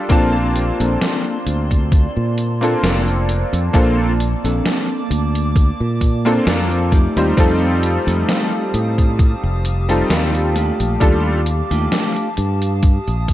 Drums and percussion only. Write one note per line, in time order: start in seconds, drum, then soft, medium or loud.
0.10 kick loud
0.10 closed hi-hat medium
0.56 closed hi-hat medium
0.80 closed hi-hat medium
1.01 snare loud
1.01 closed hi-hat medium
1.47 closed hi-hat medium
1.71 kick medium
1.71 closed hi-hat medium
1.92 kick loud
1.92 closed hi-hat medium
2.38 closed hi-hat medium
2.63 closed hi-hat medium
2.84 snare loud
2.84 closed hi-hat medium
3.08 closed hi-hat soft
3.29 closed hi-hat medium
3.53 closed hi-hat medium
3.74 kick loud
3.74 closed hi-hat medium
4.20 closed hi-hat medium
4.45 closed hi-hat medium
4.66 snare loud
4.66 closed hi-hat medium
5.11 closed hi-hat medium
5.35 closed hi-hat medium
5.56 kick loud
5.56 closed hi-hat medium
6.01 kick medium
6.01 closed hi-hat medium
6.26 closed hi-hat medium
6.47 snare loud
6.47 closed hi-hat medium
6.71 closed hi-hat soft
6.92 kick loud
6.92 closed hi-hat medium
7.17 closed hi-hat medium
7.37 kick loud
7.37 closed hi-hat medium
7.83 closed hi-hat medium
8.08 closed hi-hat medium
8.29 snare loud
8.29 closed hi-hat medium
8.74 closed hi-hat medium
8.98 kick medium
8.98 closed hi-hat medium
9.19 kick loud
9.19 closed hi-hat medium
9.65 closed hi-hat medium
9.89 closed hi-hat medium
10.10 snare loud
10.10 closed hi-hat medium
10.35 closed hi-hat soft
10.56 closed hi-hat medium
10.80 closed hi-hat medium
11.01 kick loud
11.01 closed hi-hat medium
11.46 closed hi-hat medium
11.71 closed hi-hat medium
11.92 snare loud
11.92 closed hi-hat medium
12.16 closed hi-hat soft
12.37 closed hi-hat medium
12.62 closed hi-hat medium
12.83 kick loud
12.83 closed hi-hat medium
13.08 closed hi-hat soft
13.28 kick medium
13.28 closed hi-hat medium